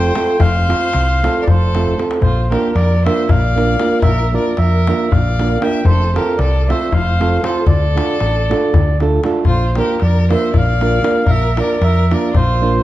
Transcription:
Already playing: F1 A3 C4 F4 A4 C5 G5
0.05 darbuka tek
0.15 A3 C4 F4 A4, darbuka tek
0.28 darbuka tek
0.39 F1 C5 F5, darbuka dum
0.55 darbuka tek
0.69 A3 C4 F4 A4, darbuka tek
0.93 C2, darbuka tek
1.09 darbuka tek
1.23 A3 C4 F4 A4, darbuka tek
1.36 darbuka tek
1.42 A#4 D5
1.48 F1 A4 C5, darbuka dum
1.61 darbuka tek
1.75 A3 C4 F4 A4, darbuka tek
1.87 darbuka dum
1.98 A3 C4 F4 A4, darbuka tek
2.11 darbuka tek
2.21 A#1 F4 C5, darbuka dum
2.50 A#3 D4 F4 G4 A#4, darbuka tek
2.75 F2 A#4 D5, darbuka tek
3.05 A#3 D4 F4 A#4 C5 E5, darbuka tek
3.29 A#1 D5 F5, darbuka dum
3.56 A#3 D4 F4 A#4, darbuka tek
3.69 darbuka tek
3.80 A#3 D4 F4 A#4, darbuka tek
3.91 darbuka tek
4.02 A#1 A#4 E5, darbuka dum
4.32 A#3 D4 F4 A#4 D5
4.57 F2 A#4 E5, darbuka tek
4.87 A#3 D4 F4 A#4, darbuka tek
5.11 A#1 D5 F5, darbuka dum
5.39 A#3 D4 F4 A#4, darbuka tek
5.51 darbuka tek
5.61 A#3 D4 F4 A#4 E5 G5, darbuka tek
5.73 darbuka tek
5.84 F1 A4 C5, darbuka dum
6.14 A3 C4 F4 G4 A4 A#4, darbuka tek
6.38 C2 A4 D5, darbuka tek
6.68 A3 C4 F4 A4 C5 E5, darbuka tek
6.92 F1 C5 F5, darbuka dum
7.20 A3 C4 F4 A4, darbuka tek
7.33 darbuka tek
7.43 A3 C4 F4 A4 C5, darbuka tek
7.56 darbuka tek
7.67 D2 A4 D5, darbuka dum
7.82 darbuka tek
7.95 A3 D4 F4 A4, darbuka tek
8.10 darbuka tek
8.20 A1, darbuka tek
8.50 A3 D4 F4 A4, darbuka tek
8.64 darbuka tek
8.74 D2, darbuka dum
9.00 A3 D4 F4 A4, darbuka tek
9.12 darbuka tek
9.24 A3 D4 F4 A4, darbuka tek
9.35 darbuka tek
9.45 A#1 F4, darbuka dum
9.49 C5
9.75 A#3 D4 F4 G4 A#4, darbuka tek
10.00 F2 A#4 D5, darbuka tek
10.30 A#3 D4 F4 A#4 C5 E5, darbuka tek
10.54 A#1 D5, darbuka dum
10.58 F5
10.81 A#3 D4 F4 A#4, darbuka tek
10.93 darbuka tek
11.03 A#3 D4 F4 A#4, darbuka tek
11.16 darbuka tek
11.26 A#1 A#4 E5, darbuka dum
11.57 A#3 D4 F4 A#4 D5, darbuka tek
11.81 F2 A#4 E5, darbuka tek
12.11 A#3 D4 F4 A#4 D5, darbuka tek
12.34 A#1 F4 C5, darbuka dum
12.62 A#3 D4 F4 A#4
12.74 darbuka tek

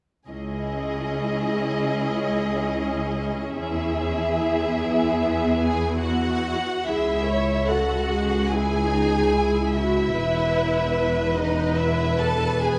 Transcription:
0.29 C#2 C#4 E4 G#4 D#5
3.56 E2 E4 G#4 E5
4.37 B3
5.59 G#4 G#5
6.02 F#4 F#5
6.85 C#2 E4 G#4 E5
7.26 C#5
7.67 F#4 A4 F#5
8.09 G#4
8.49 E4 G#4 G#5
8.91 D#4
9.33 E4
9.73 E4 F#4 E5
10.14 E1 E2 B4
11.36 D#4 D#5
11.77 E4 E5
12.18 A4 A5
12.60 G#4 B4 G#5

